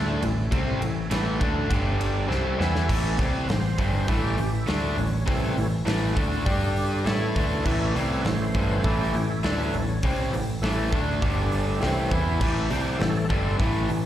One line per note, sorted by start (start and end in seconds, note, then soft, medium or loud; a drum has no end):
0.00 0.21 D2 medium
0.00 0.22 D3 medium
0.00 0.22 A3 medium
0.00 1.68 A3 medium
0.00 1.69 C#4 medium
0.00 0.22 D4 medium
0.00 1.69 E4 medium
0.22 0.51 A1 medium
0.22 0.46 A2 medium
0.22 0.46 E3 medium
0.22 ride medium
0.51 0.80 C2 medium
0.51 0.80 C3 medium
0.51 0.80 G3 medium
0.51 0.81 C4 loud
0.51 kick loud
0.51 ride loud
0.81 1.10 A1 medium
0.81 1.05 A2 medium
0.81 1.05 E3 medium
0.81 ride medium
1.10 1.39 A1 loud
1.10 1.39 A2 medium
1.10 1.40 E3 medium
1.10 1.39 A3 loud
1.10 snare loud
1.10 ride loud
1.40 1.69 D2 medium
1.40 1.68 D3 medium
1.40 1.70 A3 medium
1.40 1.70 D4 loud
1.40 kick loud
1.40 ride medium
1.69 2.26 G1 medium
1.69 2.29 G2 medium
1.69 2.27 D3 loud
1.69 2.27 G3 loud
1.69 2.29 D4 medium
1.69 2.30 G4 medium
1.69 2.30 D5 medium
1.69 kick loud
1.69 ride medium
2.01 ride medium
2.28 2.58 C2 medium
2.28 2.58 C3 medium
2.28 2.58 G3 medium
2.28 2.59 C4 loud
2.28 2.88 C#4 medium
2.28 2.89 E4 medium
2.28 2.88 A4 medium
2.28 2.89 E5 medium
2.28 snare medium
2.58 2.87 E2 medium
2.58 2.88 E3 medium
2.58 2.89 B3 loud
2.58 2.89 E4 loud
2.58 snare medium
2.75 snare medium
2.89 3.17 A1 medium
2.89 3.18 A2 medium
2.89 3.18 E3 loud
2.89 3.30 E3 medium
2.89 3.18 A3 loud
2.89 3.30 A3 soft
2.89 3.30 C#4 medium
2.89 kick loud
2.89 crash loud
3.18 3.47 C2 medium
3.18 3.48 C3 medium
3.18 3.48 G3 medium
3.18 3.48 C4 medium
3.18 kick loud
3.18 open hi-hat medium
3.44 3.48 B4 medium
3.48 3.77 A1 medium
3.48 3.73 A2 medium
3.48 3.73 E3 medium
3.48 4.07 C5 medium
3.48 snare loud
3.48 open hi-hat medium
3.78 4.07 G1 medium
3.78 4.08 G2 medium
3.78 4.08 D3 loud
3.78 4.08 G3 medium
3.78 kick loud
3.78 open hi-hat medium
4.08 4.36 A1 medium
4.08 4.36 A2 medium
4.08 4.37 E3 medium
4.08 4.38 A3 medium
4.08 4.23 A4 medium
4.08 kick loud
4.08 open hi-hat medium
4.24 4.53 G4 medium
4.38 4.66 A1 medium
4.38 4.62 A2 medium
4.38 4.62 E3 medium
4.38 open hi-hat medium
4.53 4.97 E4 medium
4.67 4.96 D2 medium
4.67 4.97 D3 medium
4.67 4.97 A3 loud
4.67 4.97 D4 loud
4.67 snare loud
4.67 open hi-hat medium
4.97 5.26 A1 medium
4.97 5.22 A2 medium
4.97 5.22 E3 medium
4.97 5.27 C#4 medium
4.97 open hi-hat medium
5.26 5.56 C2 medium
5.26 5.56 C3 loud
5.26 5.67 E3 medium
5.26 5.56 G3 loud
5.26 5.67 A3 soft
5.26 5.56 C4 loud
5.26 5.68 C#4 medium
5.26 kick loud
5.26 open hi-hat medium
5.57 5.85 A1 medium
5.57 5.81 A2 medium
5.57 5.81 E3 medium
5.57 open hi-hat medium
5.86 6.15 A1 loud
5.86 6.15 A2 loud
5.86 6.16 E3 medium
5.86 6.15 A3 loud
5.86 snare loud
5.86 open hi-hat medium
6.16 6.45 D2 medium
6.16 6.45 D3 medium
6.16 6.45 A3 loud
6.16 6.45 D4 medium
6.16 kick medium
6.16 open hi-hat medium
6.45 7.02 G2 medium
6.45 7.03 D3 medium
6.45 7.05 G3 loud
6.45 7.03 G3 medium
6.45 7.03 D4 medium
6.45 7.05 D4 medium
6.45 7.05 G4 loud
6.45 kick loud
6.45 open hi-hat medium
6.76 open hi-hat medium
7.05 7.34 A2 medium
7.05 9.40 E3 medium
7.05 7.35 A3 medium
7.05 9.40 A3 medium
7.05 9.40 C#4 medium
7.05 7.35 E4 medium
7.05 7.35 A4 medium
7.05 snare loud
7.05 open hi-hat medium
7.36 7.64 D2 medium
7.36 7.65 D3 medium
7.36 7.65 A3 loud
7.36 7.65 D4 loud
7.36 kick loud
7.36 open hi-hat medium
7.65 7.94 A1 medium
7.65 7.94 A2 loud
7.65 7.95 E3 loud
7.65 7.95 A3 loud
7.65 kick loud
7.65 crash medium
7.94 8.23 C2 loud
7.94 8.24 C3 medium
7.94 8.24 G3 loud
7.94 8.24 C4 medium
7.94 open hi-hat medium
8.21 8.53 A1 medium
8.21 8.25 B4 medium
8.21 open hi-hat medium
8.25 8.49 A2 medium
8.25 8.49 E3 medium
8.25 8.84 C5 loud
8.25 snare loud
8.55 8.83 G1 loud
8.55 8.84 G2 loud
8.55 8.84 D3 loud
8.55 8.84 G3 loud
8.55 kick loud
8.84 9.12 A1 medium
8.84 9.13 A2 medium
8.84 9.14 E3 loud
8.84 9.14 A3 loud
8.84 8.98 A4 medium
8.84 kick loud
8.84 open hi-hat medium
9.01 9.29 G4 medium
9.14 9.42 A1 medium
9.14 9.38 A2 medium
9.14 9.38 E3 medium
9.14 open hi-hat medium
9.29 9.73 E4 medium
9.43 9.72 D2 loud
9.43 9.73 D3 medium
9.43 9.83 E3 medium
9.43 9.83 A3 medium
9.43 9.73 A3 medium
9.43 9.71 C#4 medium
9.43 9.73 D4 medium
9.43 snare loud
9.43 open hi-hat medium
9.72 10.01 A1 medium
9.72 9.98 A2 medium
9.72 9.98 E3 medium
9.72 10.31 C#4 medium
9.72 open hi-hat medium
10.03 10.31 C2 medium
10.03 10.33 C3 medium
10.03 10.33 G3 loud
10.03 10.33 C4 medium
10.03 kick loud
10.03 open hi-hat medium
10.33 10.61 A1 medium
10.33 10.57 A2 medium
10.33 10.57 E3 medium
10.33 open hi-hat medium
10.62 10.90 A1 loud
10.62 10.92 A2 medium
10.62 10.89 E3 soft
10.62 10.92 E3 medium
10.62 10.89 A3 soft
10.62 10.92 A3 loud
10.62 10.90 C#4 medium
10.62 snare loud
10.62 open hi-hat medium
10.93 11.21 D2 medium
10.93 11.22 D3 medium
10.93 11.22 A3 loud
10.93 11.22 D4 medium
10.93 kick loud
10.93 open hi-hat medium
11.20 11.78 G1 medium
11.20 11.81 G2 loud
11.20 11.78 D3 medium
11.20 11.80 D3 loud
11.20 11.78 G3 medium
11.20 11.80 G3 medium
11.20 11.51 D4 medium
11.20 kick medium
11.20 open hi-hat medium
11.52 11.66 D4 medium
11.52 open hi-hat medium
11.67 11.80 A3 medium
11.80 12.10 C2 medium
11.80 12.10 C3 medium
11.80 12.21 E3 medium
11.80 12.11 G3 medium
11.80 12.21 A3 soft
11.80 12.11 C4 medium
11.80 11.96 C4 medium
11.80 12.21 C#4 medium
11.80 snare loud
11.80 open hi-hat medium
11.96 12.10 E4 medium
12.08 12.39 E2 medium
12.08 12.40 E3 medium
12.08 12.40 B3 loud
12.08 12.24 C4 medium
12.08 12.41 E4 loud
12.08 kick medium
12.08 open hi-hat medium
12.26 12.40 E4 medium
12.39 12.69 A1 loud
12.39 12.70 A2 medium
12.39 12.70 E3 medium
12.39 12.71 A3 loud
12.39 12.54 G4 medium
12.39 kick loud
12.39 crash loud
12.57 12.71 E4 medium
12.70 12.99 C2 medium
12.70 13.00 C3 medium
12.70 13.00 G3 medium
12.70 13.00 C4 medium
12.70 13.00 G4 medium
12.70 open hi-hat medium
12.96 13.28 A1 medium
12.96 13.24 A2 medium
12.96 13.25 E3 medium
12.96 13.26 A3 soft
12.96 13.26 C#4 medium
12.96 13.58 A4 medium
12.96 open hi-hat medium
13.01 13.25 E3 medium
13.01 snare loud
13.29 13.58 G1 medium
13.29 13.59 G2 medium
13.29 13.58 D3 medium
13.29 13.59 G3 loud
13.29 kick loud
13.29 open hi-hat medium
13.59 13.88 A1 medium
13.59 13.88 A2 loud
13.59 13.89 E3 loud
13.59 13.89 A3 loud
13.59 kick medium
13.59 open hi-hat medium
13.89 14.06 A1 medium
13.89 14.06 A2 medium
13.89 14.06 E3 medium
13.89 open hi-hat medium